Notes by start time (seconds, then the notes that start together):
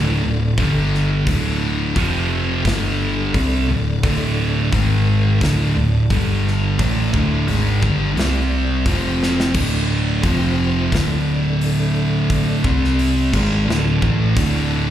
Already playing: D1 D2 A2 D3 D4 A4 D5
0.23 D1 D2 A2
0.57 G1 G2 D3 G3, kick, open hi-hat
0.94 snare
1.26 D1 D2 A2 D3 A3, kick, open hi-hat
1.95 F1 F2 C3 F3 C4 G4, kick, open hi-hat
2.64 G1 G2 D3 G3 D4 A4, kick, snare, open hi-hat
3.33 C2 C3 G3 C4 D5, kick, open hi-hat
3.68 D1 D2 A2
4.03 D1 D2 A2 D3, kick, open hi-hat
4.72 G#1 G#2 D#3 G#3 D#4 A#4, kick, open hi-hat
5.41 D1 D2 A2 D3 D4 D5 A5, kick, snare, open hi-hat
5.76 D1 D2 A2
6.10 G1 G2 D3 G3, kick, open hi-hat
6.47 snare
6.79 A1 A2 E3 A3 D5, kick, open hi-hat
7.14 D1 D2 A2 D3, kick
7.48 G#1 G#2 D#3 G#3, open hi-hat
7.83 G1 G2 D3 G3, kick
8.15 C2 C3 G3 C4 G4 D5, open hi-hat
8.20 snare
8.85 F1 F2 C3 F3 F4 C5 G5, kick, open hi-hat
9.23 snare
9.40 snare
9.54 D1 D2 A2 D3 D4 A4 D5, kick, crash
10.23 F1 F2 C3 F3 F4 C5 G5, kick, open hi-hat
10.92 D1 D2 A2 D3 D4 A4 D5, kick, snare, open hi-hat
11.61 open hi-hat
12.30 kick, open hi-hat
12.64 C2 C3 G3 C4 G4, kick
12.84 snare
12.99 open hi-hat
13.33 G#1 G#2 D#3 G#3 D4 A5, kick, crash
13.67 D1 D2 A2 D3, snare
14.02 A1 A2 E3 A3, kick
14.36 D1 D2 A2 D3, kick, open hi-hat